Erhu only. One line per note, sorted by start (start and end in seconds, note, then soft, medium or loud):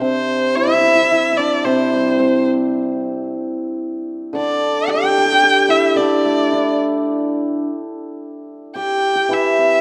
0.01 0.58 C5 medium
0.56 1.39 E5 medium
1.37 1.66 D5 medium
1.65 2.47 C5 medium
4.37 4.92 D5 medium
4.90 5.72 G5 medium
5.70 5.98 E5 medium
5.97 6.79 D5 medium
8.77 9.35 G5 medium
9.33 9.81 E5 medium